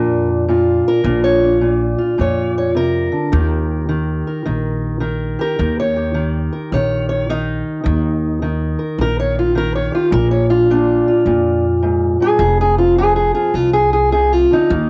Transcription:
Already playing: F2 A#2 A#3 D4 A#4
0.49 A#2 F4
0.88 A#4
1.04 A#1 A#2 D4 F4
1.24 C#5
1.43 D4
1.61 A#2
1.98 F4
2.18 F2 A#2 C#5
2.58 C#5
2.75 C3 A#4
3.12 D3
3.32 D#2 D#3 G4
3.89 D#3
4.27 A#4
4.46 A#1 D#3
5.00 D#3 A#4
5.39 G4 A#4
5.59 D#2 D#3 G4
5.80 C#5
5.96 G4
6.14 D#3
6.53 A#4
6.72 A#1 D#3 C#5
7.09 C#5
7.29 D#3 D#4
7.84 D#2 D#3
8.42 D#3
8.79 A#4
8.98 A#1 D#3 A#4
9.20 C#5
9.39 F4
9.55 D#3 A#4
9.75 C#5
9.92 F4 G4
10.10 A#1 A#2 A#4
10.31 C#5
10.50 D4 F4
10.70 A#2 D4
11.08 F4
11.26 F2 A#2
11.83 G#2
12.20 G2 G#4
12.39 F1 F2 G#4
12.61 G#4
12.78 C4 F4
12.98 F2 G#4
13.16 G#4
13.35 F4 G#4
13.54 C2 F2 F4
13.73 G#4
13.93 G#4
14.12 C3 G#4
14.33 F4
14.51 D3 D#4
14.70 D#2 D#3 A#3

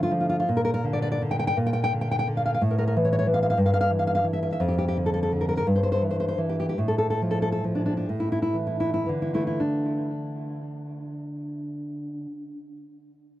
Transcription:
Already playing: D3 F3 A3
0.03 F4
0.12 F3
0.20 F4
0.29 F4
0.40 F4
0.49 A#2
0.57 A#4
0.65 A#4
0.74 A#4
0.84 D3
0.93 D5
1.02 D5
1.12 D5
1.22 D3
1.31 G5
1.39 G5
1.47 G5
1.57 A#2
1.66 G5
1.73 G5
1.84 G5
1.93 D3
2.01 G5
2.11 G5
2.19 G5
2.27 D3
2.37 F5
2.46 F5
2.54 F5
2.61 A2
2.71 A#4
2.78 A#4
2.88 A#4
2.96 E3
3.05 C#5
3.13 C#5
3.19 C#5
3.27 E3
3.34 F5
3.43 F5
3.50 F5
3.57 G2
3.66 F5
3.74 F5
3.81 F5
3.91 E3
3.99 F5
4.07 F5
4.15 F5
4.24 E3
4.33 E5
4.43 E5
4.52 E5
4.60 F2
4.68 G4
4.78 G4
4.88 G4
4.97 D3
5.06 A4
5.14 A4
5.23 A4
5.32 D3
5.41 A#4
5.49 A#4
5.57 A#4
5.67 G2
5.76 C5
5.83 C5
5.92 C5
6.02 E3
6.11 C5
6.20 C5
6.28 C5
6.38 E3
6.49 G4
6.60 G4
6.69 G4
6.78 A2
6.88 A4
6.98 A4
7.10 A4
7.22 F3
7.31 A4
7.42 A4
7.52 A4
7.64 F3
7.75 D4
7.86 D4
7.97 D4
8.09 A2
8.20 E4
8.32 E4
8.42 E4
8.54 E3
8.67 E4
8.80 E4
8.94 E4
9.06 D3 E3
9.22 E4
9.34 A3 E4
9.47 E4
9.60 D4

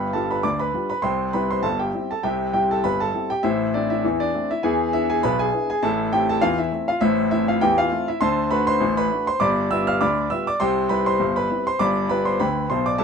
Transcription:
Already playing: G1 G2 B4 G5 B5
0.13 G3 D4 F4 A4 A5
0.30 B4 B5
0.43 D2 D3 D5 D6
0.59 B4 B5
0.74 G3 D4 F4
0.90 B4 B5
1.02 C2 C3 C5 G5 C6
1.33 G3 C4 E4 B4 B5
1.51 C5 C6
1.63 G1 G2 A4 A5
1.79 G4 G5
1.93 G3 C4 E4
2.11 A4 A5
2.23 C2 C3 G4 E5 G5
2.53 G3 C4 E4 G4 G5
2.71 A4 A5
2.84 G1 G2 B4 B5
3.00 A4 A5
3.14 G3 C4 E4
3.30 G4 G5
3.43 A1 A2 E4 C5 E5
3.74 A3 C4 D4 E4 D5
3.90 E4 E5
4.05 E2 E3
4.20 D4 D5
4.34 A3 C4 E4
4.51 E4 E5
4.63 E2 E3 G#4 E5 G#5
4.93 B3 D4 E4 E5
5.10 G#4 G#5
5.23 B1 B2 B4 B5
5.39 G#4 G#5
5.54 B3 D4 E4
5.70 G#4 G#5
5.83 A1 A2 A4 E5 A5
6.13 A3 C4 E4 G4 G5
6.29 A4 A5
6.41 E2 E3 F4 F5
6.58 E4 E5
6.72 A3 C4 E4
6.88 F4 F5
7.01 A1 A2 E4 C5 E5
7.31 A3 C4 E4 E5
7.48 F4 F5
7.61 E2 E3 G4 G5
7.78 F4 F5
7.92 A3 C4 E4
8.08 E4 E5
8.21 D2 D3 C5 A5 C6
8.51 A3 D4 F#4 B4 B5
8.67 C5 C6
8.81 A1 A2
8.97 B4 B5
9.11 A3 D4 F#4
9.27 C5 C6
9.40 G1 G2 D5 B5 D6
9.71 G3 B3 F4 E5 E6
9.87 F5 F6
10.01 D2 D3 D5 B5 D6
10.30 G3 B3 F4 E5 E6
10.47 D5 D6
10.60 C2 C3 C5 G5 C6
10.89 G3 C4 E4 B4 B5
11.06 C5 C6
11.20 G1 G2
11.36 B4 B5
11.50 G3 C4 E4
11.67 C5 C6
11.79 G1 G2 D5 B5 D6
12.09 G3 B3 F4 B4 B5
12.25 C5 C6
12.40 D2 D3 B4 G5 B5
12.70 B1 B2 C5 C6
12.86 D5 D6
12.98 C2 C3 A4 E5 A5

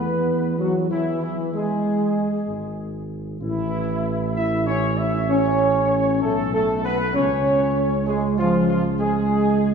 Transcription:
Already playing: E2 B3 B4
0.58 F#3 F#4
0.90 E3 E4
1.22 E3 E4
1.53 G#3 G#4
2.47 G#1
3.40 A1 E3 E4
4.35 E4 E5
4.66 C#4 C#5
4.97 E4 E5
5.27 C#4 C#5
6.21 B1 A3 A4
6.51 A3 A4
6.81 B3 B4
7.13 C#2 C#4 C#5
8.05 G#3 G#4
8.38 F3 F4
8.68 F3 F4
8.99 G#3 G#4

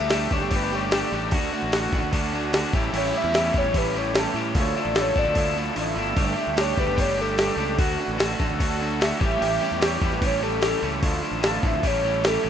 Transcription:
Already playing: A3 D4 G4 E5
0.00 D2
0.05 A4
0.09 G3 A3 D4 G4, snare, crash
0.31 D2 G3 A3 D4 G4 C#5, kick
0.41 G1, snare
0.50 G3 A3 D4 G4, kick, crash
0.56 B4
0.71 G3 A3 D4 G4
0.75 C#5
0.91 G3 A3 D4 G4 D5, snare, crash
1.11 A1 G3 A3 D4 G4
1.31 D2 D3 A3 C#4 D4 F#4, kick, crash
1.52 D3 A3 C#4 D4 F#4
1.63 A1
1.72 D3 A3 C#4 D4 F#4, snare, crash
1.92 A1 D3 A3 C#4 D4 F#4, kick
2.01 D2
2.12 D3 A3 C#4 D4 F#4, kick, crash
2.32 D3 A3 C#4 D4 F#4
2.53 D3 A3 C#4 D4 F#4, snare, crash
2.73 A1 A2 E3 G3 A3 C#4 E4 G4, kick
2.92 A1 A2 E3 G3 A3 C#4 G4, crash
2.97 C#5
3.12 A2 E3 G3 A3 C#4 G4
3.17 E5
3.24 E2
3.32 A2 E3 G3 A3 C#4 G4, snare, crash
3.52 E2 A2 E3 G3 A3 C#4 G4, kick
3.58 C#5
3.65 A1
3.73 A2 E3 G3 A3 C#4 G4, kick, crash
3.78 B4
3.93 A2 E3 G3 A3 C#4 G4
3.98 C#5
4.14 A2 E3 G3 A3 C#4 G4, snare, crash
4.19 A4
4.34 A2 E3 G3 A3 C#4 G4
4.54 D2 D3 F3 A3 D4 E4 F4 A4, kick, crash
4.60 C#5
4.75 D3 F3 A3 D4 E4 F4
4.80 D5
4.85 A1
4.95 D3 F3 A3 D4 E4 F4, snare, crash
5.01 C#5
5.15 A1 D3 F3 A3 D4 E4 F4 D5, kick
5.25 D2
5.35 D3 F3 A3 D4 E4 F4, kick, crash
5.56 D3 F3 A3 D4 E4 F4
5.76 A1 D3 F3 A3 D4 E4 F4, crash
5.81 E5
5.95 G1 D3 F3 A3 D4 E4 F4
6.16 G1 G3 A3 D4 G4, kick, crash
6.36 G3 A3 D4 G4
6.47 D2
6.56 G3 A3 D4 G4, snare, crash
6.61 C#5
6.76 D2 G3 A3 D4 G4, kick
6.80 B4
6.87 G1
6.96 G3 A3 D4 G4, kick, crash
7.01 C#5
7.17 G3 A3 D4 G4
7.21 A4
7.37 G3 A3 D4 G4, snare, crash
7.56 C#2 G3 A3 D4 G4
7.77 D2 D3 A3 C#4 D4 F#4, kick, crash
7.98 D3 A3 C#4 D4 F#4
8.08 A1
8.13 B4
8.18 D3 A3 C#4 D4 F#4 A4, snare, crash
8.38 A1 D3 A3 C#4 D4 F#4, kick
8.50 D2
8.59 D3 A3 C#4 D4 F#4, kick, crash
8.79 D3 A3 C#4 D4 F#4
8.99 D3 A3 C#4 D4 F#4 E5, snare, crash
9.19 A1 A2 E3 G3 A3 C#4 G4, kick
9.39 A1 A2 E3 G3 A3 C#4 G4, crash
9.60 A2 E3 G3 A3 C#4 G4
9.72 E2
9.80 A2 E3 G3 A3 C#4 G4, snare, crash
9.86 C#5
10.01 E2 A2 E3 G3 A3 C#4 G4, kick
10.06 B4
10.12 A1, snare
10.21 A2 E3 G3 A3 C#4 G4, kick, crash
10.27 C#5
10.41 A2 E3 G3 A3 C#4 G4 A4
10.61 A2 E3 G3 A3 C#4 G4, snare, crash
10.82 C#2 A2 E3 G3 A3 C#4 G4
11.02 D2 D3 F3 A3 D4 E4 F4, kick, crash
11.20 D3 F3 A3 D4 E4 F4
11.31 A1
11.41 D3 F3 A3 D4 E4, snare, crash
11.45 F4 A5
11.62 A1 D3 F3 A3 D4 E4 F4, kick
11.67 E5
11.74 D2
11.83 A1 A2 E3 G3 A3 C#4 E4 G4, kick, crash
11.87 C#5
12.03 A2 E3 G3 A3 C#4 E4 G4
12.24 A2 E3 G3 A3 C#4 E4 G4 A4, snare, crash
12.42 A1 A2 E3 G3 A3 C#4 E4 G4

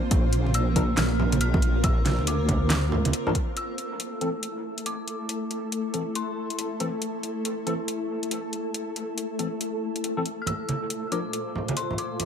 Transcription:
Already playing: A#3 C4 F4 C5
0.11 A#1 A#4, kick, closed hi-hat, low conga
0.33 closed hi-hat
0.47 high conga
0.54 E6, closed hi-hat
0.76 F3 D4 A#4, kick, closed hi-hat, high conga
0.97 A#1 F6, snare, clap, closed hi-hat
1.19 low conga
1.32 closed hi-hat, high conga
1.41 F6, closed hi-hat
1.54 kick, low conga
1.62 closed hi-hat
1.84 A#1 E6, kick, closed hi-hat, low conga
2.06 snare, closed hi-hat, high conga
2.19 D2, high conga
2.27 D6, closed hi-hat
2.49 kick, closed hi-hat, high conga
2.70 snare, clap, closed hi-hat
2.92 low conga
3.05 D2, closed hi-hat, high conga
3.13 closed hi-hat
3.27 F3 D4 A#4, low conga
3.35 kick, closed hi-hat
3.56 A3 E4 A4 E6, closed hi-hat
3.78 closed hi-hat
4.00 closed hi-hat
4.21 E3 C4 A4, closed hi-hat
4.43 closed hi-hat
4.78 closed hi-hat
4.86 D6, closed hi-hat
5.08 closed hi-hat
5.29 closed hi-hat
5.51 closed hi-hat
5.72 closed hi-hat
5.94 E3 C4 A4, closed hi-hat
6.15 C6, closed hi-hat
6.50 closed hi-hat
6.59 closed hi-hat
6.80 E3 C4 A4, closed hi-hat
7.02 closed hi-hat
7.23 closed hi-hat
7.45 closed hi-hat
7.67 E3 C4 A4, closed hi-hat
7.88 closed hi-hat
8.23 closed hi-hat
8.31 closed hi-hat
8.53 closed hi-hat
8.74 closed hi-hat
8.96 closed hi-hat
9.18 closed hi-hat
9.39 E3 C4 A4, closed hi-hat
9.61 closed hi-hat
9.96 closed hi-hat
10.04 closed hi-hat
10.17 E3 C4 A4
10.26 closed hi-hat
10.42 F6
10.46 A#2 F4 C5 E6, closed hi-hat, low conga
10.69 closed hi-hat, high conga
10.90 closed hi-hat
11.12 F3 D4 A#4 D6, closed hi-hat
11.33 closed hi-hat
11.55 low conga
11.68 closed hi-hat, high conga
11.77 C6, closed hi-hat
11.90 low conga
11.98 D6, closed hi-hat
12.20 closed hi-hat, low conga

